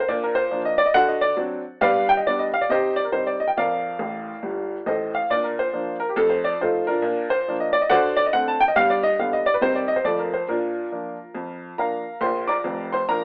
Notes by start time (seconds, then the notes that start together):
0.00 C5
0.08 A#2 D4 D5
0.23 A#4
0.35 C5
0.51 F3 A#3 D4
0.65 D#5
0.78 D5
0.86 D#5
0.94 D3 F#4 F#5
1.08 D#5
1.21 D5
1.37 F#3 C4 D4
1.81 G2 B3 B4 D5 F5
2.09 G5
2.17 D#5
2.27 G3 B3 D4 D5
2.39 D#5
2.54 F5
2.61 D5
2.69 C3 D#4 G4 C5 D#5
2.96 D5
3.04 A#4
3.12 G3 C4 D#4 C5
3.27 D5
3.40 D#5
3.48 G5
3.57 F2 A#4 D5 F5
3.99 A1 A2
4.43 G1 G2
4.86 A1 A2 A4 C5 D#5
5.15 F5
5.30 A#2 D4 D5
5.44 A#4
5.59 C5
5.73 F3 A#3 D4
6.00 A#4
6.09 G4
6.16 F2 A3 A4
6.30 C5
6.44 D5
6.61 F3 A3 D#4 F4 A4 C5
6.87 D4 F4 A#4
7.02 A#2 D4
7.30 C5
7.48 F3 A#3 D4
7.60 D#5
7.73 D5
7.82 D#5
7.90 D3 F#4 C5 D5 F#5
8.17 D5
8.26 D#5
8.33 D3 A3 C4 F#5
8.48 A5
8.60 G5
8.68 D#5
8.76 G2 B3 F5
8.90 D5
9.03 D#5
9.19 D3 G3 B3 F5
9.33 D#5
9.46 D5
9.54 B4
9.61 C3 D#3 G3 C4 D#4 C5
9.75 D5
9.88 D#5
9.96 C5
10.04 F2 F3 A3 C4 D5
10.19 A#4
10.34 C5
10.48 A#2 D4 F4 A#4
10.92 F3 A#3 D4
11.35 F2
11.78 F3 A#3 D4 A#4 F5 A#5
12.21 A#1 A#2 C5 C6
12.47 D5 A#5 D6
12.64 F1 F2
12.93 C5 C6
13.08 F3 A#3 D4 A#4 A#5